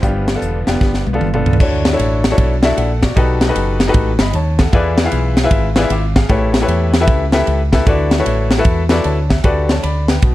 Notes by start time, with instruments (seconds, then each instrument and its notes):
Already playing: string section D3 F3, grand piano E4 C5
0.02 fingered electric bass G1, grand piano G2 B3 D4 F4 G4, string section G3 B3, kick, closed hi-hat
0.28 snare, closed hi-hat
0.35 grand piano B3 D4 F4 A4
0.42 fingered electric bass E1, closed hi-hat
0.67 fingered electric bass F1, grand piano B3 D4 F4 G4, snare, closed hi-hat
0.81 fingered electric bass G1, kick, snare
0.94 snare
1.06 fingered electric bass B1, high tom
1.13 grand piano B3 D4 F4 A4, high tom
1.20 fingered electric bass G1, mid tom
1.33 grand piano B3 D4 F4 A4, mid tom
1.46 fingered electric bass C#2, floor tom
1.53 floor tom
1.60 fingered electric bass D2, grand piano D3 D4 E4 F#4 A4 C#5, kick, crash
1.85 snare, ride
1.91 grand piano D4 E4 F#4 A4 C#5
1.99 fingered electric bass A1, ride
2.24 snare, ride
2.30 grand piano D4 E4 F#4 A4 C#5
2.38 fingered electric bass B1, kick, ride
2.62 grand piano D4 E4 F#4 A4 E5, snare, ride
2.77 fingered electric bass A#1, grand piano A4 F#5, ride
3.02 grand piano F#4 D5, kick, snare, ride
3.16 fingered electric bass B1, grand piano B2 D#4 F#4 G4 A4 B4, kick, ride
3.41 snare, ride
3.48 grand piano D#4 F#4 G4 A4 B4
3.56 fingered electric bass F#1, ride
3.80 snare, ride
3.88 grand piano D#4 F#4 G4 A4 B4
3.94 fingered electric bass A1, kick, ride
4.19 fingered electric bass G1, grand piano D#5 B5, snare, ride
4.33 fingered electric bass D#2, grand piano C#5 A5, ride
4.59 grand piano A4 F#5, kick, snare, ride
4.72 fingered electric bass E2, grand piano E3 E4 F4 G#4 B4 D5, kick, ride
4.98 snare, ride
5.04 grand piano E4 F4 G#4 B4 F5
5.12 fingered electric bass B1, ride
5.37 snare, ride
5.44 grand piano E4 F4 G#4 B4 E5
5.51 fingered electric bass G#1, kick, ride
5.76 grand piano E4 F4 G#4 B4 D5, snare, ride
5.82 grand piano E5
5.90 fingered electric bass G#1, grand piano F5 D6, ride
6.16 grand piano G#4 F5, kick, snare, ride
6.29 fingered electric bass A1, grand piano A2 E4 G4 A4 B4 C#5, kick, ride
6.54 snare, ride
6.61 grand piano E4 G4 A4 B4 C#5
6.68 fingered electric bass E2, ride
6.94 snare, ride
7.00 grand piano E4 G4 A4 B4 E5
7.07 fingered electric bass C#2, kick, ride
7.32 grand piano E4 G4 A4 B4 E5, snare, ride
7.47 fingered electric bass C#2, ride
7.72 grand piano E4 G4 A4 B4 E5, kick, snare, ride
7.87 fingered electric bass D2, grand piano D3 E4 F#4 A4 B4 D5, kick, ride
8.11 snare, ride
8.18 grand piano E4 F#4 A4 B4 C#5
8.26 fingered electric bass A1, ride
8.51 snare, ride
8.57 grand piano E4 F#4 A4 B4 E5
8.65 fingered electric bass E2, kick, ride
8.89 grand piano E4 F#4 A4 B4 D5, snare, ride
9.04 fingered electric bass D2, grand piano C#5 A5, ride
9.30 grand piano E5, kick, snare, ride
9.44 fingered electric bass D2, grand piano D3 F#4 G4 A4 B4 D5, kick, ride
9.69 grand piano C#5 A5, snare, ride
9.83 fingered electric bass D2, grand piano D5 B5, ride
10.08 grand piano B4 G5, snare, ride
10.22 fingered electric bass B1, grand piano B2, kick, ride